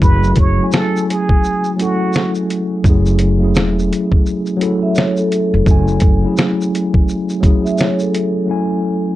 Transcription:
Already playing: E4 F#4
0.00 F#1 F#3 A3 C#4 E4 B4, kick, shaker
0.04 G#4
0.23 shaker
0.36 F#1 C#5, kick, closed hi-hat, shaker
0.58 F#3 A3 C#4
0.62 E4 G#5
0.72 A4, snare, shaker
0.96 shaker
1.09 G#4, closed hi-hat, shaker
1.29 kick
1.44 shaker
1.64 shaker
1.76 F#3 A3 C#4, closed hi-hat, shaker
1.81 E4 F#4 A4
2.13 snare, shaker
2.35 shaker
2.50 closed hi-hat, shaker
2.84 F#1 F#3 A3 C#4, kick, shaker
2.88 E4 G#4
3.06 shaker
3.19 closed hi-hat, shaker
3.38 F#3 A3 C#4
3.43 E4 G#4
3.55 E1, snare, shaker
3.79 shaker
3.93 closed hi-hat, shaker
4.12 kick
4.26 shaker
4.46 shaker
4.57 F#3 A3 C#4
4.61 E4 A4, closed hi-hat, shaker
4.82 E5
4.95 C#5, snare, shaker
5.17 A4, shaker
5.32 closed hi-hat, shaker
5.54 F1
5.65 F#1 F#3 A3 C#4, kick, shaker
5.69 E4 G#5
5.88 shaker
6.00 F#1, kick, closed hi-hat, shaker
6.21 F#3 A3 C#4
6.26 E4 G#4
6.37 snare, shaker
6.61 shaker
6.75 closed hi-hat, shaker
6.94 kick
7.09 shaker
7.29 shaker
7.40 F#3 A3 C#4, kick, closed hi-hat, shaker
7.45 E4 G#4
7.64 E5, shaker
7.77 C#5, snare, shaker
7.99 A4, shaker
8.15 closed hi-hat, shaker
8.45 F#3 A3 C#4
8.50 E4 G#5

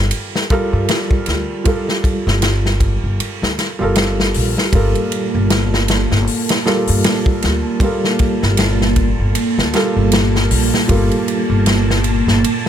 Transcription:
Already playing: G3 F4 A4 A#4
0.11 ride
0.35 snare
0.50 G3 F4 A4 A#4, kick, ride
0.73 G2
0.88 snare, ride
1.11 kick
1.26 D2, snare, ride
1.64 G3 F4 A4 A#4, kick, ride
1.89 snare
2.04 kick, ride
2.27 G1, snare
2.42 snare, ride
2.66 snare
2.80 kick, ride
3.04 G1
3.20 ride
3.42 D2, snare
3.59 snare, ride
3.79 G1 G3 F4 A4 A#4
3.95 snare, ride
4.20 snare
4.34 A#1, open hi-hat
4.58 snare
4.72 G1 G3 A#3 F4 A4 A#4 A5, kick, ride
4.95 ride
5.12 ride
5.35 G1
5.50 snare, ride
5.74 snare
5.88 snare, ride
6.11 G1, snare
6.27 open hi-hat
6.49 snare, ride
6.66 G3 F4 A4 A#4, snare
6.87 G2, open hi-hat
7.04 snare, ride
7.26 kick
7.42 D2, snare, ride
7.80 G3 F4 A4, kick, ride
7.85 A#4
8.04 snare
8.19 kick, ride
8.43 G1, snare
8.57 snare, ride
8.81 snare
8.96 kick, ride
9.19 G1
9.35 ride
9.58 D2, snare
9.73 G3 F4 A4 A#4, snare, ride
9.96 G1
10.12 snare, ride
10.36 snare
10.51 A#1, open hi-hat
10.74 snare
10.88 G1 G3 F4 A4 A#4, kick, ride
11.11 ride
11.28 ride
11.50 G1
11.66 snare, ride
11.90 snare
12.04 ride
12.27 G1, snare
12.44 ride

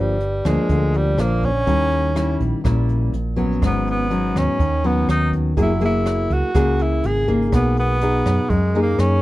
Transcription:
Already playing: G1 G2 F3 A#3 D4
0.00 G3
0.20 closed hi-hat
0.45 D2 F3 G#3 A#3 D4, kick, cross-stick, closed hi-hat
0.69 D2 D3, kick, closed hi-hat
0.94 G3, closed hi-hat
1.17 A#1 F3 A#3 D4, cross-stick, closed hi-hat
1.43 C#4, kick, closed hi-hat
1.67 D#2 D#3 G3 C#4 E4, kick, closed hi-hat
1.91 closed hi-hat
2.15 G3 C#4 E4, cross-stick, closed hi-hat
2.40 A#1, kick, closed hi-hat
2.64 A#1 A#2 G3 C#4 E4, kick, cross-stick, closed hi-hat
2.89 closed hi-hat
3.13 A#1, closed hi-hat
3.36 F#3 B3 C#4, kick, closed hi-hat
3.62 G#1 G#2, kick, cross-stick, closed hi-hat
3.66 B3
3.87 B3, closed hi-hat
4.10 F#3 B3 C#4, closed hi-hat
4.35 D#2 C#4, kick, cross-stick, closed hi-hat
4.59 D#2 D#3, kick, closed hi-hat
4.84 F#3 B3 C#4, closed hi-hat
5.08 D#2 D#4, cross-stick, closed hi-hat
5.33 kick, closed hi-hat
5.57 F#1 F#3 A#3 E4 G#4, kick, closed hi-hat
5.61 E4
5.81 A#3 E4 G#4, closed hi-hat
5.85 E4
6.06 cross-stick, closed hi-hat
6.30 C#2 F#4, kick, closed hi-hat
6.54 C#2 C#3 A#3 E4 G#4, kick, cross-stick, closed hi-hat
6.79 E4, closed hi-hat
7.04 G#1 G#4, closed hi-hat
7.28 A#3 D#4 G#4, kick, closed hi-hat
7.52 B1 B2 B3, kick, cross-stick, closed hi-hat
7.77 B3, closed hi-hat
8.01 D#4 G#4, closed hi-hat
8.26 F#2, kick, cross-stick, closed hi-hat
8.50 F#2 G#3, kick, closed hi-hat
8.74 A#3 D#4 G#4, closed hi-hat
8.82 A#3
8.99 F#2 C#4, cross-stick, closed hi-hat

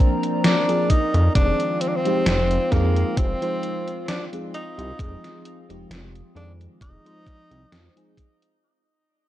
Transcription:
Already playing: F3 A#3 C4 D4 A#4 C5 D5 A#5
0.23 closed hi-hat
0.44 D4, snare, closed hi-hat
0.68 F3 A#3 C4 D4 G#4, closed hi-hat
0.90 D#4, kick, closed hi-hat
1.14 F2, closed hi-hat
1.35 F1 D#3 F3 G#3 C4 D4 F4 G#4 F5, kick, closed hi-hat
1.60 closed hi-hat
1.81 C4, closed hi-hat
1.88 D4
1.96 C4
2.04 F3 G#3 C4 D#4 G4, closed hi-hat
2.26 F1, snare, closed hi-hat
2.51 closed hi-hat
2.71 F2 F3 G#3 A#3 C4 D#4 G#4, kick, snare, closed hi-hat
2.96 closed hi-hat
3.17 F1 C4, kick, closed hi-hat
3.41 F3 G#3 C4 D#4 C5, closed hi-hat
3.63 closed hi-hat
3.88 closed hi-hat
4.08 D4, snare, closed hi-hat
4.32 F3 G#3 C4 D#4 G#4, closed hi-hat
4.54 D#4, closed hi-hat
4.78 C2, closed hi-hat
4.99 F1 F3 G#3 C4 D#4 G#4, kick, closed hi-hat
5.24 snare, closed hi-hat
5.45 closed hi-hat
5.69 F1 F3 G#3 C4 D#4 G4, closed hi-hat
5.90 F1, snare, closed hi-hat
6.15 closed hi-hat
6.35 F2 D#3 F3 G#3 C4 D4 G#4, closed hi-hat
6.61 closed hi-hat
6.81 F1 D#4, kick, closed hi-hat
7.05 F3 G#3 C4 D#4 C5, closed hi-hat
7.27 kick, closed hi-hat
7.51 C2, closed hi-hat
7.72 F2, snare, closed hi-hat
7.95 F3 G#3 C4 D#4 G#4, closed hi-hat
8.17 kick, closed hi-hat
8.42 closed hi-hat

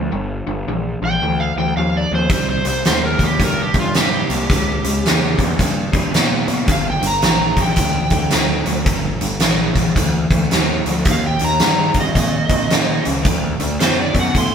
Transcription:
Already playing: F3
0.11 G1 G2 D3
0.47 G1 G2 D3
0.67 A#1 G2 E3
1.02 A#1 G2 E3 G5
1.22 D2 G2 E3
1.40 F5
1.56 D2 G2 E3 G5
1.77 D#2 G2 F3 F5
1.97 D5
2.11 D#2 G2 F3 C5
2.29 C2 C3 G3 C5, kick, closed hi-hat
2.49 C5
2.64 C2 C3 G3 C5, closed hi-hat
2.85 D#2 C3 A3 C5, snare, closed hi-hat
3.06 A#4
3.19 D#2 C3 A3, kick, closed hi-hat
3.24 G4
3.40 G2 C3 A3, kick, closed hi-hat
3.44 A#4
3.62 G4
3.74 G2 C3 A3, kick, closed hi-hat
3.80 F4
3.94 G2 C3 A#3 G4, snare, closed hi-hat
4.30 C2 C3 A#3, closed hi-hat
4.50 C#2 C#3 G#3, kick, closed hi-hat
4.84 C#2 C#3 G#3, closed hi-hat
5.04 E2 C#3 A#3, snare, closed hi-hat
5.38 E2 C#3 A#3, kick, closed hi-hat
5.59 G2 C#3 A#3, kick, closed hi-hat
5.92 G2 C#3 A#3, kick, closed hi-hat
6.11 A#2 C#3 B3, closed hi-hat
6.15 snare
6.46 A#2 C#3 B3, closed hi-hat
6.66 G1 G2 D3, kick, closed hi-hat
6.72 F5
6.90 G5
7.02 G1 G2 D3, closed hi-hat
7.07 A#5
7.22 A#1 G2 E3, snare, closed hi-hat
7.56 A#1 G2 E3, kick, closed hi-hat
7.62 G5
7.76 D2 G2 E3, kick, closed hi-hat
8.10 D2 G2 E3, kick, closed hi-hat
8.30 D2 G2 F3, snare, closed hi-hat
8.66 D2 G2 F3, closed hi-hat
8.86 G1 G2 D3, kick, closed hi-hat
9.21 G1 G2 D3, closed hi-hat
9.40 A#1 G2 E3, snare, closed hi-hat
9.75 A#1 G2 E3, kick, closed hi-hat
9.96 D2 G2 E3, kick, closed hi-hat
10.30 D2 G2 E3, kick, closed hi-hat
10.51 D#2 G2 F3, snare, closed hi-hat
10.86 D2 G2 F3, closed hi-hat
11.05 D#2 D#3, kick, closed hi-hat
11.09 A#3 F5
11.27 G5
11.39 D#2 D#3 A#3, closed hi-hat
11.44 A#5
11.59 G2 D#3 C4, snare, closed hi-hat
11.94 G2 D#3 C4, kick, closed hi-hat
12.00 D#5
12.15 A#2 D#3 C4, kick, closed hi-hat
12.49 A#2 D#3 C4, kick, closed hi-hat
12.70 A#2 D#3 C#4, snare, closed hi-hat
13.04 C#2 D#3 C#4, closed hi-hat
13.23 D2 D3 A3, kick, closed hi-hat
13.59 D2 D3 A3, closed hi-hat
13.80 F#2 D3 B3 C5, snare, closed hi-hat
14.02 D5
14.14 F#2 D3 B3, kick, closed hi-hat
14.19 F#5
14.35 A2 D3 B3 C6, kick, closed hi-hat

